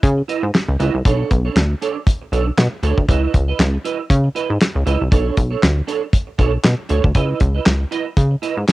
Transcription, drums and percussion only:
0.03 kick loud
0.03 closed hi-hat medium
0.29 closed hi-hat medium
0.54 snare loud
0.54 clap medium
0.54 closed hi-hat medium
0.80 closed hi-hat medium
1.05 kick loud
1.05 closed hi-hat loud
1.31 kick medium
1.31 closed hi-hat medium
1.56 snare loud
1.56 clap medium
1.56 closed hi-hat medium
1.82 closed hi-hat medium
2.07 kick loud
2.07 closed hi-hat medium
2.33 closed hi-hat medium
2.58 snare loud
2.58 clap medium
2.58 closed hi-hat medium
2.83 closed hi-hat medium
2.98 kick medium
3.09 kick medium
3.09 closed hi-hat medium
3.34 kick medium
3.34 closed hi-hat medium
3.60 snare loud
3.60 clap medium
3.60 closed hi-hat medium
3.85 closed hi-hat medium
4.10 kick loud
4.10 closed hi-hat loud
4.36 closed hi-hat medium
4.61 snare loud
4.61 clap medium
4.61 closed hi-hat medium
4.87 closed hi-hat medium
5.12 kick medium
5.12 closed hi-hat medium
5.37 kick medium
5.37 closed hi-hat medium
5.63 snare loud
5.63 clap medium
5.63 closed hi-hat medium
5.88 closed hi-hat medium
6.13 kick loud
6.13 closed hi-hat medium
6.39 kick medium
6.39 closed hi-hat medium
6.64 snare loud
6.64 clap medium
6.64 closed hi-hat medium
6.89 closed hi-hat medium
7.04 kick medium
7.15 kick medium
7.15 closed hi-hat medium
7.40 kick medium
7.40 closed hi-hat medium
7.66 snare loud
7.66 clap medium
7.66 closed hi-hat medium
7.92 closed hi-hat medium
8.17 kick loud
8.17 closed hi-hat medium
8.43 closed hi-hat medium
8.68 snare loud
8.68 clap medium
8.68 closed hi-hat medium

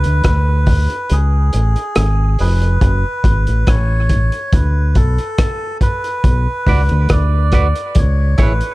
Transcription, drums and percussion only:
0.04 closed hi-hat medium
0.24 kick medium
0.24 cross-stick loud
0.24 closed hi-hat medium
0.66 kick medium
0.66 open hi-hat medium
0.90 closed hi-hat soft
1.09 closed hi-hat medium
1.53 closed hi-hat medium
1.76 closed hi-hat soft
1.95 cross-stick loud
1.95 closed hi-hat medium
2.39 open hi-hat medium
2.62 closed hi-hat soft
2.81 kick loud
2.81 closed hi-hat medium
3.24 kick medium
3.24 closed hi-hat medium
3.47 closed hi-hat medium
3.67 kick loud
3.67 cross-stick loud
3.67 closed hi-hat medium
4.09 kick medium
4.09 closed hi-hat medium
4.32 closed hi-hat soft
4.52 kick loud
4.52 closed hi-hat medium
4.95 kick medium
4.95 closed hi-hat medium
5.18 closed hi-hat soft
5.38 kick loud
5.38 cross-stick loud
5.38 closed hi-hat loud
5.81 kick medium
5.81 closed hi-hat medium
6.04 closed hi-hat soft
6.24 kick loud
6.24 closed hi-hat medium
6.67 kick medium
6.67 open hi-hat medium
6.89 closed hi-hat medium
7.09 kick loud
7.09 cross-stick loud
7.09 closed hi-hat medium
7.52 kick medium
7.52 cross-stick medium
7.52 closed hi-hat medium
7.75 closed hi-hat medium
7.95 kick loud
7.95 closed hi-hat medium
8.38 kick medium
8.38 closed hi-hat medium
8.61 closed hi-hat medium

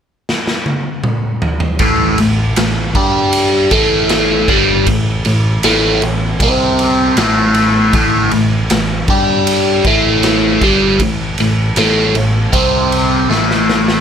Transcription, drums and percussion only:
0.29 snare medium
0.47 snare medium
0.66 high tom medium
1.04 mid tom medium
1.42 floor tom medium
1.60 floor tom loud
1.79 kick loud
1.79 ride medium
2.18 ride medium
2.56 snare loud
2.56 ride medium
2.95 kick loud
2.95 ride medium
3.33 ride loud
3.71 kick medium
3.71 ride medium
4.09 snare loud
4.09 ride medium
4.48 kick loud
4.48 ride medium
4.87 kick medium
4.87 ride loud
5.25 ride medium
5.63 snare loud
5.63 ride medium
6.02 ride medium
6.40 kick loud
6.40 ride loud
6.79 ride medium
7.17 snare loud
7.17 ride medium
7.54 ride medium
7.93 kick loud
7.93 ride medium
8.31 ride medium
8.70 snare loud
8.70 ride medium
9.08 kick loud
9.08 ride medium
9.47 ride loud
9.84 kick loud
9.84 ride medium
10.23 snare medium
10.23 ride medium
10.61 kick medium
10.61 ride medium
11.00 kick loud
11.00 ride loud
11.38 ride medium
11.76 snare loud
11.76 ride medium
12.15 ride medium
12.53 kick loud
12.53 ride loud
12.92 ride medium
13.31 snare medium
13.51 snare medium
13.69 snare medium
13.88 snare medium

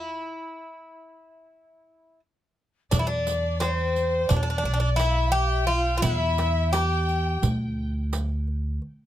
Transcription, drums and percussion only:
2.92 riq medium
2.92 darbuka dum medium
3.27 riq medium
3.61 riq soft
3.61 darbuka tek medium
3.96 riq soft
4.30 riq medium
4.30 darbuka dum medium
4.99 riq soft
4.99 darbuka tek medium
5.35 darbuka ka soft
6.02 riq medium
6.02 darbuka dum medium
6.38 riq soft
6.38 darbuka tek medium
6.74 riq medium
6.74 darbuka tek medium
7.09 riq soft
7.43 riq medium
7.43 darbuka dum medium
8.13 riq soft
8.13 darbuka tek medium
8.48 darbuka ka soft
8.82 darbuka ka soft

